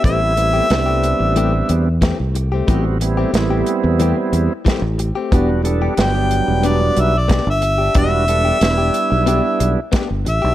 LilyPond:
<<
  \new Staff \with { instrumentName = "Harmonica" } { \time 4/4 \key e \minor \tempo 4 = 91 e''2. r4 | r1 | r4 g''4 d''8 e''16 d''8 e''8. | e''2. r8 e''8 | }
  \new Staff \with { instrumentName = "Clean electric guitar" } { \time 4/4 \key e \minor <e a c' g'>16 r8 <a c' g'>16 r16 <a c' g'>16 r8 <e a c' g'>16 r8. <e a c' g'>16 r8 <a c' g'>16 | <e a c' g'>16 r8 <a c' g'>16 r16 <a c' g'>16 r8 <e a c' g'>16 r8. <e a c' g'>16 r8 <a c' g'>16 | <b d' g'>16 r8 <d' g'>16 r16 <d' g'>16 r8 <b d' g'>16 r8. <b d' g'>16 r8 <d' g'>16 | <b d' g'>16 r8 <d' g'>16 r16 <d' g'>16 r8 <b d' g'>16 r8. <b d' g'>16 r8 <d' g'>16 | }
  \new Staff \with { instrumentName = "Tonewheel organ" } { \time 4/4 \key e \minor <g b c' e'>8 <g b c' e'>8 <g b c' d'>2 r4 | <g b c' fis'>8 <g b c' e'>8 <g b c' e'>2 r4 | <g b d' fis'>8 <g b d' a'>8 <fis g b d'>2 r4 | <g b d' fis'>8 <g b d' a'>8 <g b d' e'>2 r4 | }
  \new Staff \with { instrumentName = "Fingered electric bass" } { \clef bass \time 4/4 \key e \minor a,,4 c,8. a,,8. e,8. c,8. | a,,4 a,,8 r16 e,8 r16 e,16 r8 a,,8 r16 | e,,4 g,,8. e,,8. b,,8. g,,8. | e,,4 e,,8 r16 b,,8 r16 b,,16 r8 g,,16 a,,16 b,,16 | }
  \new DrumStaff \with { instrumentName = "Drums" } \drummode { \time 4/4 <hh bd>8 hh8 <hh sn>8 hh8 hh8 hh8 <hh bd sn>8 hh8 | <hh bd>8 hh8 <hh sn>8 hh8 hh8 hh8 <hh bd sn>8 hh8 | <hh bd>8 hh8 <hh sn>8 hh8 hh8 hh8 <hh bd sn>8 hh8 | <hh bd>8 hh8 <hh sn>8 hh8 hh8 hh8 <hh bd sn>8 hh8 | }
>>